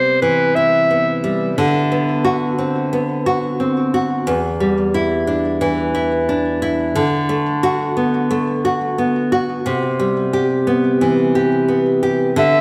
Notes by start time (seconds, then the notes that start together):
Already playing: C3 G3 B3 C5
0.22 E3 B4
0.55 E4 E5
0.91 B3
1.24 G3
1.58 D3
1.92 B3
2.25 F#4
2.58 C4
2.93 B3
3.26 F#4
3.60 C4
3.94 F#4
4.27 E2
4.60 G3
4.94 E4
5.27 D4
5.61 E3
5.95 E4
6.29 D4
6.62 E4
6.95 D3
7.29 A3
7.63 F#4
7.97 B3
8.31 A3
8.65 F#4
8.98 B3
9.32 F#4
9.66 C3
9.99 G3
10.33 G4
10.67 B3
11.01 E3
11.35 G4
11.68 B3
12.03 G4
12.36 D3 E5